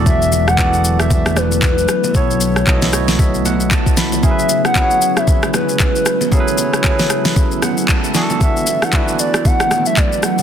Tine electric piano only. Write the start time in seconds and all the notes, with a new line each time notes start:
Already playing: E3 B3 F#4 A4 D5
0.58 E3 B3 F#4 G#4 D5
0.66 A4
2.14 B2 B3 E4 A4 C#5
2.67 B2 B3 E4 A4 D#5
2.94 C#5
3.20 E5
3.46 F#5
3.72 A5
3.98 B5
4.23 F#3 C#4 E4 G#4 A#4
4.31 B4
4.75 F#3 C#4 E4 G#4 B4
4.84 C#5
6.32 F#3 C#4 E4 G#4 A4
6.40 B4
6.84 F#3 C#4 E4 G#4 A4
6.92 B4
7.63 F#5
7.89 A5
8.14 E3 B3 D4 F#4 G#4
8.22 A4
8.92 E3 B3 D4 F#4 B4